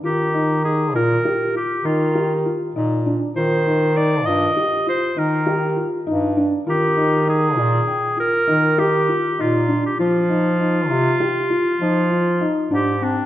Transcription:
<<
  \new Staff \with { instrumentName = "Clarinet" } { \time 11/8 \key ees \major \tempo 4 = 100 g'4 aes'8 bes'4 g'8 f'4 r4. | c''4 d''8 ees''4 c''8 bes'4 r4. | g'4 aes'4. bes'4 g'4 f'8. g'16 | f'1~ f'8 g'8 d'8 | }
  \new Staff \with { instrumentName = "Felt piano" } { \time 11/8 \key ees \major f'8 ees'8 ees'8 f'8 g'8 f'8 ees'8 g'8 f'8 ees'8 d'8 | f'8 ees'8 ees'8 f'8 g'8 f'8 ees'8 g'8 f'8 ees'8 d'8 | f'8 ees'8 ees'8 f'8 g''8 f'8 ees'8 g'8 f'8 ees'8 d'8 | f'8 ees'8 ees'8 f'8 g'8 f'8 ees'8 f'8 ees'8 d'8 c'8 | }
  \new Staff \with { instrumentName = "Bass clarinet" } { \clef bass \time 11/8 \key ees \major ees4. bes,8 r4 ees4. bes,4 | ees4. g,8 r4 ees4. g,4 | ees4. bes,8 r4 ees4. bes,4 | f4. c8 r4 f4. aes,4 | }
>>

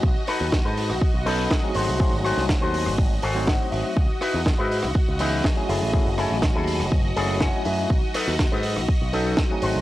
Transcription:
<<
  \new Staff \with { instrumentName = "String machine" } { \time 4/4 \key b \mixolydian \tempo 4 = 122 <fis' dis''>1~ | <fis' dis''>1 | <fis' dis''>1~ | <fis' dis''>1~ |
<fis' dis''>1 | }
  \new Staff \with { instrumentName = "Clean electric guitar" } { \time 4/4 \key b \mixolydian r8 <dis' a' b'>8 r16 <dis' a' b'>8. r8 <dis' a' b'>8 r8 <fis' a' bis'>8~ | <fis' a' bis'>16 r16 <fis' a' bis'>8 r16 <fis' a' bis'>8. r8 <fis' a' bis' gis''>8 fis''8 e''8 | r8 <dis' e' fis' b'>8 r16 <dis' e' fis' b'>8. r8 <dis' e' fis' b'>8 r8 <e' gis' a'>8~ | <e' gis' a'>16 r16 <e' gis' a'>8 r16 <e' gis' a'>8. r8 <e' gis' a' gis''>8 fis''8 e''8 |
r8 <dis' a' b'>8 r16 <dis' a' b'>8. r8 <dis' a' b'>8 r8 <fis' a' bis'>8 | }
  \new Staff \with { instrumentName = "Tine electric piano" } { \time 4/4 \key b \mixolydian r2 r8 <fis b cis' dis' a'>8. <fis a bis dis' gis'>8. | <fis a bis dis' gis'>8 <fis a bis dis' gis''>2 r16 <fis a bis dis' bis'>4~ <fis a bis dis' bis'>16 | r2 r8 <e fis b gis' dis''>8. <fis a cis' e' gis'>8. | <fis a cis' e' gis'>8 <fis a cis' e' gis''>2 <fis a cis' e' gis'>8 <fis a cis' e' gis''>4 |
r2 r8 <fis b cis' dis' a'>8. <fis a bis dis' gis'>8. | }
  \new Staff \with { instrumentName = "Picked electric bass" } { \clef bass \time 4/4 \key b \mixolydian b,,16 r8 dis,8 gis,8 b,,16 r16 b,,8. r8 gis,,16 bis,,16~ | bis,,16 gis,,8 bis,,8 dis,8 gis,,16 gis,,8 gis,,8. r16 gis,,16 r16 | cis,16 r8 e,8 gis,8 cis,16 r16 cis,8. r8 fis,,16 a,,16~ | a,,16 fis,,8 a,,8 dis,8 fis,,16 fis,,8 fis,,8. r16 fis,8 |
b,,16 r8 dis,8 gis,8 b,,16 r16 b,,8. r8 gis,,16 bis,,16 | }
  \new DrumStaff \with { instrumentName = "Drums" } \drummode { \time 4/4 bd8 <hho ss>8 <bd sn>8 hho16 ss16 bd8 hho8 <bd sn>8 hho8 | bd8 <hho ss>16 sn16 <bd sn>8 hho16 ss16 bd8 hho8 <bd sn>8 hho8 | bd8 <hho ss>8 <bd sn>8 hho16 ss16 bd8 hho8 <bd sn>8 hho8 | bd8 <hho ss>8 <bd sn>8 hho16 ss16 bd8 hho8 <bd sn>8 hho8 |
bd8 <hho ss>8 <bd sn>8 hho16 ss16 bd8 hho8 <bd sn>8 hho8 | }
>>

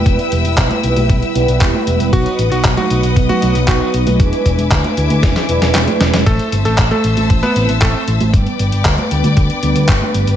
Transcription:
<<
  \new Staff \with { instrumentName = "String section" } { \time 4/4 \key b \phrygian \tempo 4 = 116 << { <e'' g'' e'''>1 | <dis'' fis'' dis'''>1 | <e'' gis'' d'''>1 | \key a \dorian <e'' a'' e'''>1 |
<d'' g'' d'''>1 | } \\ { b'1~ | b'1~ | b'1 | c''1 |
b'1 | } >> }
  \new Staff \with { instrumentName = "Electric grand piano" } { \time 4/4 \key b \phrygian r1 | fis'8 r16 fis'16 r16 fis'8. r16 fis'8 r16 fis'8 r8 | r1 | \key a \dorian <a a'>8 r16 <a a'>16 r16 <a a'>8. r16 <b b'>8 r16 <a a'>8 r8 |
r1 | }
  \new Staff \with { instrumentName = "Analog polysynth" } { \time 4/4 \key b \phrygian <g b e' b'>4. <g b e' b'>4 <g b e' b'>4. | r4. <fis b dis' b'>4 <fis b dis' b'>4. | <gis d' e' b'>4. <gis d' e' b'>4 <gis d' e' b'>4. | \key a \dorian r4. <c' e'>4 <a c' e' c''>4. |
<g b b'>4. <g b d' b'>4 <g b d' b'>4. | }
  \new Staff \with { instrumentName = "Picked electric bass" } { \clef bass \time 4/4 \key b \phrygian e,,16 r16 e,,16 e,,16 b,,16 r16 b,,16 b,,16 b,,16 r16 b,,16 b,,16 e,,16 r16 e,,16 e,,16 | b,,16 r16 a,,16 b,,16 b,,16 r16 b,,16 b,,16 b,,16 r16 b,,16 b,,16 b,,16 r16 b,,16 b,,16 | e,,16 r16 e,,16 e,,16 d,16 r16 d,16 d,16 e,,16 r16 e,,16 e,,16 e,,16 r16 e,,16 e,,16 | \key a \dorian a,,16 r16 g,,16 a,,16 a,,16 r16 a,,16 a,,16 a,,16 r16 a,,16 a,,16 a,,16 r16 a,,16 a,,16 |
g,,16 r16 g,,16 g,,16 d,16 r16 d,16 d,16 d,16 r16 d,16 d,16 g,,16 r16 g,,16 g,,16 | }
  \new DrumStaff \with { instrumentName = "Drums" } \drummode { \time 4/4 <hh bd>16 hh16 hh16 hh16 <hc hh bd>16 <cgho hh>16 hh16 <cgho hh>16 <hh bd>16 hh16 hh16 hh16 <hc hh bd>16 cgho16 hh16 hh16 | <hh bd>16 hh16 hh16 hh16 <hc hh bd>16 <cgho hh>16 hh16 hh16 <hh bd>16 <cgho hh>16 hh16 hh16 <hc hh bd>8 hh16 <cgho hh>16 | <hh bd>16 hh16 <hh bd>16 hh16 <hc hh bd>16 <cgho hh>16 hh16 <cgho hh>16 <hh bd sn>16 <hh sn>16 hh16 <hh sn>16 <hc hh sn>16 <cgho hh>16 <hh sn>16 <hh sn>16 | <hh bd>16 hh16 hh16 hh16 <hc hh bd>16 <cgho hh>16 hh16 <cgho hh>16 <hh bd>16 <cgho hh>16 hh16 hh16 <hc hh bd>8 hh16 <cgho hh>16 |
<hh bd>16 hh16 hh16 hh16 <hc hh bd>16 <cgho hh>16 hh16 <cgho hh>16 <hh bd>16 hh16 hh16 hh16 <hc hh bd>16 cgho16 hh16 hh16 | }
>>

